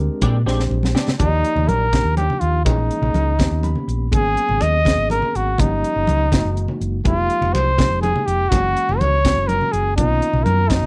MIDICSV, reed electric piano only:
0, 0, Header, 1, 2, 480
1, 0, Start_track
1, 0, Tempo, 487805
1, 1177, Time_signature, 6, 3, 24, 8
1, 10688, End_track
2, 0, Start_track
2, 0, Title_t, "Reed electric piano"
2, 0, Program_c, 0, 4
2, 0, Note_on_c, 0, 56, 88
2, 0, Note_on_c, 0, 60, 74
2, 0, Note_on_c, 0, 62, 76
2, 0, Note_on_c, 0, 67, 76
2, 0, Note_on_c, 0, 70, 89
2, 399, Note_off_c, 0, 56, 0
2, 399, Note_off_c, 0, 62, 0
2, 400, Note_off_c, 0, 60, 0
2, 401, Note_off_c, 0, 70, 0
2, 402, Note_off_c, 0, 67, 0
2, 457, Note_on_c, 0, 56, 64
2, 462, Note_on_c, 0, 60, 62
2, 462, Note_on_c, 0, 62, 59
2, 462, Note_on_c, 0, 67, 62
2, 462, Note_on_c, 0, 72, 71
2, 1121, Note_off_c, 0, 56, 0
2, 1123, Note_off_c, 0, 60, 0
2, 1124, Note_off_c, 0, 62, 0
2, 1124, Note_off_c, 0, 67, 0
2, 1124, Note_off_c, 0, 72, 0
2, 1176, Note_on_c, 0, 58, 62
2, 1178, Note_on_c, 0, 53, 67
2, 1181, Note_on_c, 0, 74, 65
2, 1184, Note_on_c, 0, 63, 63
2, 1187, Note_on_c, 0, 67, 73
2, 1841, Note_off_c, 0, 58, 0
2, 1842, Note_off_c, 0, 53, 0
2, 1843, Note_off_c, 0, 74, 0
2, 1845, Note_off_c, 0, 63, 0
2, 1846, Note_off_c, 0, 67, 0
2, 1901, Note_on_c, 0, 58, 53
2, 1901, Note_on_c, 0, 62, 48
2, 1902, Note_on_c, 0, 53, 56
2, 1904, Note_on_c, 0, 63, 48
2, 1906, Note_on_c, 0, 67, 61
2, 2563, Note_off_c, 0, 58, 0
2, 2564, Note_off_c, 0, 53, 0
2, 2564, Note_off_c, 0, 62, 0
2, 2565, Note_off_c, 0, 63, 0
2, 2566, Note_off_c, 0, 67, 0
2, 2604, Note_on_c, 0, 52, 72
2, 2605, Note_on_c, 0, 56, 58
2, 2611, Note_on_c, 0, 58, 62
2, 2611, Note_on_c, 0, 68, 70
2, 2612, Note_on_c, 0, 61, 61
2, 3275, Note_off_c, 0, 52, 0
2, 3276, Note_off_c, 0, 56, 0
2, 3278, Note_off_c, 0, 58, 0
2, 3279, Note_off_c, 0, 61, 0
2, 3279, Note_off_c, 0, 68, 0
2, 3332, Note_on_c, 0, 51, 66
2, 3336, Note_on_c, 0, 59, 60
2, 3337, Note_on_c, 0, 58, 61
2, 3339, Note_on_c, 0, 67, 67
2, 3340, Note_on_c, 0, 61, 59
2, 3580, Note_on_c, 0, 83, 59
2, 4000, Note_off_c, 0, 51, 0
2, 4002, Note_off_c, 0, 58, 0
2, 4002, Note_off_c, 0, 59, 0
2, 4003, Note_off_c, 0, 67, 0
2, 4004, Note_off_c, 0, 61, 0
2, 4026, Note_off_c, 0, 83, 0
2, 4049, Note_on_c, 0, 54, 67
2, 4049, Note_on_c, 0, 58, 63
2, 4050, Note_on_c, 0, 59, 61
2, 4053, Note_on_c, 0, 61, 65
2, 4057, Note_on_c, 0, 68, 81
2, 4718, Note_off_c, 0, 54, 0
2, 4718, Note_off_c, 0, 58, 0
2, 4718, Note_off_c, 0, 59, 0
2, 4720, Note_off_c, 0, 61, 0
2, 4722, Note_off_c, 0, 68, 0
2, 4774, Note_on_c, 0, 54, 54
2, 4779, Note_on_c, 0, 58, 51
2, 4780, Note_on_c, 0, 61, 50
2, 4780, Note_on_c, 0, 68, 62
2, 4781, Note_on_c, 0, 59, 50
2, 5440, Note_off_c, 0, 54, 0
2, 5443, Note_off_c, 0, 58, 0
2, 5443, Note_off_c, 0, 61, 0
2, 5444, Note_off_c, 0, 59, 0
2, 5444, Note_off_c, 0, 68, 0
2, 5495, Note_on_c, 0, 53, 64
2, 5497, Note_on_c, 0, 55, 64
2, 5500, Note_on_c, 0, 58, 59
2, 5501, Note_on_c, 0, 61, 61
2, 5504, Note_on_c, 0, 67, 77
2, 6161, Note_off_c, 0, 53, 0
2, 6162, Note_off_c, 0, 55, 0
2, 6163, Note_off_c, 0, 58, 0
2, 6164, Note_off_c, 0, 61, 0
2, 6165, Note_off_c, 0, 67, 0
2, 6215, Note_on_c, 0, 52, 65
2, 6216, Note_on_c, 0, 58, 62
2, 6220, Note_on_c, 0, 56, 57
2, 6221, Note_on_c, 0, 63, 60
2, 6225, Note_on_c, 0, 66, 73
2, 6881, Note_off_c, 0, 52, 0
2, 6881, Note_off_c, 0, 58, 0
2, 6883, Note_off_c, 0, 56, 0
2, 6884, Note_off_c, 0, 63, 0
2, 6885, Note_off_c, 0, 66, 0
2, 6928, Note_on_c, 0, 53, 62
2, 6931, Note_on_c, 0, 58, 64
2, 6933, Note_on_c, 0, 56, 62
2, 6937, Note_on_c, 0, 63, 56
2, 6937, Note_on_c, 0, 67, 71
2, 7597, Note_off_c, 0, 53, 0
2, 7598, Note_off_c, 0, 58, 0
2, 7599, Note_off_c, 0, 56, 0
2, 7601, Note_off_c, 0, 63, 0
2, 7601, Note_off_c, 0, 67, 0
2, 7647, Note_on_c, 0, 53, 51
2, 7651, Note_on_c, 0, 56, 52
2, 7653, Note_on_c, 0, 58, 50
2, 7653, Note_on_c, 0, 63, 52
2, 7659, Note_on_c, 0, 67, 63
2, 8316, Note_off_c, 0, 53, 0
2, 8318, Note_off_c, 0, 56, 0
2, 8318, Note_off_c, 0, 63, 0
2, 8319, Note_off_c, 0, 58, 0
2, 8321, Note_off_c, 0, 67, 0
2, 8375, Note_on_c, 0, 52, 69
2, 8375, Note_on_c, 0, 56, 62
2, 8375, Note_on_c, 0, 58, 63
2, 8377, Note_on_c, 0, 61, 58
2, 8378, Note_on_c, 0, 66, 78
2, 9039, Note_off_c, 0, 52, 0
2, 9039, Note_off_c, 0, 56, 0
2, 9039, Note_off_c, 0, 58, 0
2, 9040, Note_off_c, 0, 61, 0
2, 9040, Note_off_c, 0, 66, 0
2, 9098, Note_on_c, 0, 58, 52
2, 9100, Note_on_c, 0, 52, 55
2, 9101, Note_on_c, 0, 56, 50
2, 9105, Note_on_c, 0, 61, 50
2, 9106, Note_on_c, 0, 66, 60
2, 9760, Note_off_c, 0, 52, 0
2, 9760, Note_off_c, 0, 58, 0
2, 9761, Note_off_c, 0, 56, 0
2, 9763, Note_off_c, 0, 61, 0
2, 9764, Note_off_c, 0, 66, 0
2, 9810, Note_on_c, 0, 58, 61
2, 9813, Note_on_c, 0, 51, 68
2, 9815, Note_on_c, 0, 61, 63
2, 9816, Note_on_c, 0, 59, 63
2, 9819, Note_on_c, 0, 65, 77
2, 10475, Note_off_c, 0, 58, 0
2, 10476, Note_off_c, 0, 51, 0
2, 10477, Note_off_c, 0, 61, 0
2, 10478, Note_off_c, 0, 59, 0
2, 10479, Note_off_c, 0, 65, 0
2, 10531, Note_on_c, 0, 51, 55
2, 10533, Note_on_c, 0, 58, 52
2, 10535, Note_on_c, 0, 59, 55
2, 10538, Note_on_c, 0, 61, 51
2, 10539, Note_on_c, 0, 66, 60
2, 10688, Note_off_c, 0, 51, 0
2, 10688, Note_off_c, 0, 58, 0
2, 10688, Note_off_c, 0, 59, 0
2, 10688, Note_off_c, 0, 61, 0
2, 10688, Note_off_c, 0, 66, 0
2, 10688, End_track
0, 0, End_of_file